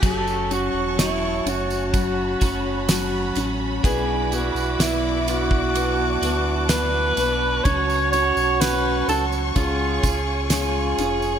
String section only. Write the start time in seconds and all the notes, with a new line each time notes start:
0.03 F#4 C#5 A5 C#6
1.93 B5
3.83 D5 D6
5.74 A5
7.64 C#5 C#6
9.55 F4 G#5